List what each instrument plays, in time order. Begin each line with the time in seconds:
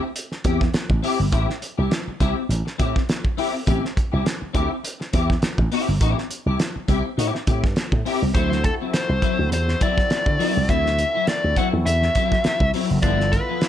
0.03 muted clean electric guitar stroke
0.16 closed hi-hat
0.32 muted clean electric guitar stroke, snare
0.44 slap bass E2, clean electric guitar C4 E4 G4, kick, closed hi-hat
0.61 muted clean electric guitar stroke, kick, snare
0.74 muted slap bass stroke, muted clean electric guitar stroke, snare, closed hi-hat
0.90 slap bass A1, muted clean electric guitar stroke, kick
1.03 clean electric guitar C4 E4 G4, open hi-hat
1.19 slap bass G1, muted clean electric guitar stroke
1.32 slap bass A1, clean electric guitar C4 E4 G4, kick, closed hi-hat
1.49 muted clean electric guitar stroke, snare
1.62 muted clean electric guitar stroke, closed hi-hat
1.78 slap bass C2, clean electric guitar C4 E4 G4
1.91 muted clean electric guitar stroke, snare, closed hi-hat
2.07 muted slap bass stroke, muted clean electric guitar stroke
2.20 slap bass C2, clean electric guitar C4 E4 G4, kick, closed hi-hat
2.37 muted clean electric guitar stroke
2.49 slap bass A1, muted clean electric guitar stroke, closed hi-hat
2.65 muted clean electric guitar stroke, snare
2.78 slap bass A2, clean electric guitar C4 E4 G4, kick, closed hi-hat
2.95 muted clean electric guitar stroke, kick, snare
3.09 snare, closed hi-hat
3.24 muted clean electric guitar stroke, kick
3.37 clean electric guitar C4 E4 G4, open hi-hat
3.54 muted clean electric guitar stroke
3.66 slap bass A1, clean electric guitar C4 E4 G4, kick, closed hi-hat
3.83 muted clean electric guitar stroke, snare
3.96 muted clean electric guitar stroke, kick, closed hi-hat
4.12 slap bass C2, clean electric guitar C4 E4 G4
4.25 muted clean electric guitar stroke, snare, closed hi-hat
4.41 muted clean electric guitar stroke, muted slap bass stroke
4.53 slap bass D2, clean electric guitar C4 E4 G4, kick, closed hi-hat
4.70 muted clean electric guitar stroke
4.83 muted clean electric guitar stroke, closed hi-hat
5.00 muted clean electric guitar stroke, snare
5.13 slap bass E2, clean electric guitar C4 E4 G4, kick, closed hi-hat
5.29 muted clean electric guitar stroke, kick, snare
5.42 muted slap bass stroke, muted clean electric guitar stroke, snare, closed hi-hat
5.58 slap bass A1, muted clean electric guitar stroke, kick
5.72 clean electric guitar C4 E4 G4, open hi-hat
5.88 slap bass G1, muted clean electric guitar stroke
6.01 slap bass A1, clean electric guitar C4 E4 G4, kick, closed hi-hat
6.17 muted clean electric guitar stroke, snare
6.29 muted clean electric guitar stroke, closed hi-hat
6.46 slap bass C2, clean electric guitar C4 E4 G4
6.59 muted clean electric guitar stroke, snare, closed hi-hat
6.75 muted clean electric guitar stroke, muted slap bass stroke
6.88 slap bass C2, clean electric guitar C4 E4 G4, kick, closed hi-hat
7.05 muted clean electric guitar stroke
7.17 slap bass A2, clean electric guitar C4 E4 G4, closed hi-hat
7.34 muted clean electric guitar stroke, snare
7.47 slap bass A2, clean electric guitar C4 E4 G4, kick, closed hi-hat
7.64 slap bass G2, muted clean electric guitar stroke, kick, snare
7.76 muted clean electric guitar stroke, snare, closed hi-hat
7.92 slap bass A2, muted clean electric guitar stroke, kick
8.05 clean electric guitar C4 E4 G4, open hi-hat
8.22 slap bass C2, muted clean electric guitar stroke
8.34 slap bass D2, clean electric guitar F#3 C4 E4, tonewheel organ C4 E4 F#4 A4, lead electric guitar C5, kick, closed hi-hat
8.51 muted clean electric guitar stroke, snare
8.64 lead electric guitar A4, muted clean electric guitar stroke, kick, closed hi-hat
8.80 clean electric guitar F#3 C4 E4
8.93 lead electric guitar C5, muted clean electric guitar stroke, snare, closed hi-hat
9.09 slap bass C2, muted clean electric guitar stroke
9.22 clean electric guitar F#3 C4 E4, kick, closed hi-hat
9.38 slap bass D2, muted clean electric guitar stroke
9.51 slap bass E2, lead electric guitar C5, muted clean electric guitar stroke, closed hi-hat
9.68 muted clean electric guitar stroke, snare
9.80 clean electric guitar F#3 C4 E4, lead electric guitar D5, kick, closed hi-hat
9.98 muted clean electric guitar stroke, kick, snare
10.10 muted clean electric guitar stroke, snare, closed hi-hat
10.26 slap bass D3, muted clean electric guitar stroke, kick
10.39 clean electric guitar F#3 C4 E4, open hi-hat
10.56 slap bass C2, muted clean electric guitar stroke
10.69 slap bass D2, clean electric guitar F#3 C4 E4, lead electric guitar E5, kick, closed hi-hat
10.85 muted clean electric guitar stroke, snare
10.98 muted clean electric guitar stroke, closed hi-hat
11.14 clean electric guitar F#3 C4 E4
11.27 lead electric guitar D5, muted clean electric guitar stroke, snare, closed hi-hat
11.44 slap bass D2, muted clean electric guitar stroke
11.57 clean electric guitar F#3 C4 E4, lead electric guitar F#5, kick, closed hi-hat
11.73 slap bass E2, muted clean electric guitar stroke
11.86 slap bass E2, lead electric guitar E5, muted clean electric guitar stroke, closed hi-hat
12.02 muted clean electric guitar stroke, snare
12.15 clean electric guitar F#3 C4 E4, kick, closed hi-hat
12.31 muted clean electric guitar stroke, kick, snare
12.44 muted slap bass stroke, snare, closed hi-hat
12.60 slap bass C2, muted clean electric guitar stroke, kick
12.74 clean electric guitar F#3 C4 E4, open hi-hat
12.91 slap bass F#1, muted clean electric guitar stroke
13.02 slap bass G1, clean electric guitar F3 B3 E4, tonewheel organ B3 E4 F4 A4, lead electric guitar D5, kick, closed hi-hat
13.20 muted clean electric guitar stroke, snare
13.32 lead electric guitar B4, muted clean electric guitar stroke, kick, closed hi-hat
13.48 clean electric guitar F3 B3 E4
13.61 muted clean electric guitar stroke, snare, closed hi-hat